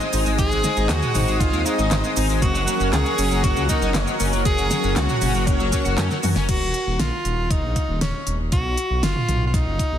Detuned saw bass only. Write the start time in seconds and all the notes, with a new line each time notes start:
0.13 G#1
0.26 G#1
0.39 G#1
0.51 G#1
0.77 G#1
0.89 D#2
1.15 G#1
1.28 G#1
1.40 G#1
1.53 D#2
1.79 G#1
1.91 G#1
2.17 G#1
2.29 G#1
2.42 F#1
2.55 F#1
2.80 F#1
2.93 C#2
3.18 F#1
3.31 F#1
3.44 F#1
3.56 C#2
3.82 F#1
3.95 F#1
4.20 F#1
4.33 F#1
4.45 F#1
4.58 F#1
4.84 F#1
4.96 C#2
5.22 F#1
5.35 F#1
5.47 F#1
5.60 F#1
5.85 F#1
5.98 F#2
6.23 F#2
6.36 F#1
6.49 D#1
6.61 D#1
6.87 D#1
6.99 A#1
7.25 D#1
7.38 D#1
7.50 D#1
7.63 A#1
7.89 D#1
8.01 D#1
8.27 D#1
8.39 D#1
8.52 B1
8.65 B1
8.90 B1
9.03 F#1
9.28 B1
9.41 B1
9.54 B1
9.66 F#1
9.92 B1